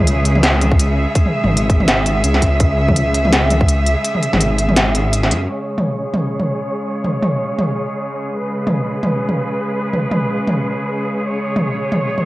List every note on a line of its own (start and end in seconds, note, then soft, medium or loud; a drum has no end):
0.00 1.06 C#2 loud
0.00 5.45 C#3 medium
0.00 5.45 G#3 medium
0.00 5.45 G#4 medium
0.00 5.47 E5 medium
0.07 closed hi-hat medium
0.25 closed hi-hat medium
0.35 mid tom medium
0.43 snare loud
0.43 closed hi-hat medium
0.61 closed hi-hat medium
0.61 mid tom soft
0.72 kick loud
0.79 closed hi-hat medium
1.15 kick loud
1.15 closed hi-hat medium
1.26 mid tom soft
1.44 2.23 G#1 loud
1.44 mid tom soft
1.57 closed hi-hat medium
1.70 kick loud
1.70 closed hi-hat medium
1.80 mid tom medium
1.88 snare loud
1.88 closed hi-hat medium
2.06 closed hi-hat medium
2.24 2.41 C#2 loud
2.24 closed hi-hat medium
2.34 snare soft
2.42 2.59 C#2 medium
2.42 kick medium
2.42 closed hi-hat medium
2.60 3.96 C#2 loud
2.60 kick loud
2.60 closed hi-hat medium
2.88 kick medium
2.88 mid tom medium
2.96 closed hi-hat medium
3.14 closed hi-hat medium
3.25 mid tom medium
3.32 snare loud
3.32 closed hi-hat medium
3.50 closed hi-hat medium
3.50 mid tom soft
3.61 kick loud
3.68 closed hi-hat medium
3.86 closed hi-hat medium
4.04 closed hi-hat medium
4.15 mid tom soft
4.23 closed hi-hat soft
4.33 5.33 G#1 loud
4.33 snare soft
4.33 mid tom medium
4.41 closed hi-hat medium
4.58 closed hi-hat medium
4.69 mid tom medium
4.76 snare loud
4.76 closed hi-hat medium
4.95 closed hi-hat medium
5.13 closed hi-hat medium
5.23 snare soft
5.31 5.48 F#2 medium
5.31 closed hi-hat medium
5.49 12.25 C#3 medium
5.49 12.25 G#3 medium
5.49 12.25 G#4 medium
5.49 8.38 C#5 medium
5.78 mid tom soft
6.14 mid tom soft
6.40 mid tom soft
7.04 mid tom soft
7.23 mid tom soft
7.59 mid tom soft
8.39 11.27 B4 medium
8.67 mid tom soft
9.03 mid tom soft
9.29 mid tom soft
9.93 mid tom soft
10.11 mid tom soft
10.47 mid tom soft
11.28 12.25 C#5 medium
11.56 mid tom soft
11.92 mid tom soft
12.18 mid tom soft